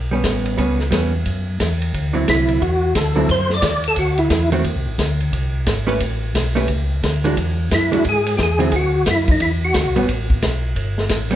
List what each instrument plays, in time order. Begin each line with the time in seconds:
Already playing: tonewheel organ B1
0.11 hollow-body jazz guitar G3 B3 C#4
0.24 tonewheel organ A1, kick, snare, hi-hat pedal, ride
0.46 ride
0.57 tonewheel organ C#2, hollow-body jazz guitar G3 B3 C#4, kick, ride
0.79 snare
0.91 tonewheel organ E2, hollow-body jazz guitar G3 B3 C#4, kick, snare, hi-hat pedal, ride
1.26 tonewheel organ F#2, kick, ride
1.60 tonewheel organ E2, kick, snare, hi-hat pedal, ride
1.82 ride
1.94 tonewheel organ D2, kick, ride
2.13 hollow-body jazz guitar D3 F#3 C4 E4
2.27 tonewheel organ C2 E4, kick, snare, hi-hat pedal, ride
2.48 ride
2.61 tonewheel organ E2 F#4, kick, ride
2.95 tonewheel organ D2 A4, kick, snare, hi-hat pedal, ride
3.16 hollow-body jazz guitar D3 F#3 C4 E4
3.28 tonewheel organ F#2 C5, kick, ride
3.50 tonewheel organ D5, snare
3.62 tonewheel organ D#2, kick, snare, hi-hat pedal, ride
3.84 ride
3.88 tonewheel organ A4
3.96 tonewheel organ D2 F#4, kick, ride
4.18 tonewheel organ E4, ride
4.30 tonewheel organ E2, kick, snare, hi-hat pedal, ride
4.52 hollow-body jazz guitar D#3 A3 C4 F#4, ride
4.64 tonewheel organ D#2, kick, ride
4.75 tonewheel organ C2
4.86 tonewheel organ A1
4.98 tonewheel organ D2, kick, snare, hi-hat pedal, ride
5.20 ride
5.33 tonewheel organ C2, kick, ride
5.66 tonewheel organ G#1, kick, snare, hi-hat pedal, ride
5.87 hollow-body jazz guitar A3 C#4 G4 B4, ride
6.00 tonewheel organ A1, kick, ride
6.35 tonewheel organ B1, kick, snare, hi-hat pedal, ride
6.55 hollow-body jazz guitar A3 C#4 G4 B4, ride
6.68 tonewheel organ C#2, kick, ride
7.03 tonewheel organ D2, kick, snare, hi-hat pedal, ride
7.24 hollow-body jazz guitar E3 G#3 D4 F#4, ride
7.37 tonewheel organ E2, kick, ride
7.71 tonewheel organ F#2 E4, kick, snare, hi-hat pedal, ride
7.92 tonewheel organ F#2, hollow-body jazz guitar E3 G#3 D4 F#4, ride
8.05 tonewheel organ G#2, kick, ride
8.09 tonewheel organ G#4
8.26 ride
8.37 tonewheel organ E2 G4, kick, snare, hi-hat pedal
8.43 tonewheel organ G#4
8.59 hollow-body jazz guitar D3 F#3 C4 E4, ride
8.72 tonewheel organ D2, kick, ride
8.76 tonewheel organ F#4
9.06 tonewheel organ F#2, kick, snare, hi-hat pedal, ride
9.11 tonewheel organ E4
9.28 tonewheel organ D#4, kick, ride
9.40 tonewheel organ E2 E4, kick, ride
9.65 tonewheel organ F#4
9.74 tonewheel organ D2, kick, snare, hi-hat pedal, ride
9.85 tonewheel organ C2
9.96 tonewheel organ A1, hollow-body jazz guitar G3 B3 C#4, ride
10.09 tonewheel organ A1, kick, ride
10.30 kick
10.42 tonewheel organ B1, kick, snare, hi-hat pedal, ride
10.76 tonewheel organ G1, kick, ride
10.98 snare
11.09 tonewheel organ A1, kick, snare, hi-hat pedal, ride
11.31 hollow-body jazz guitar G3 B3 C#4, ride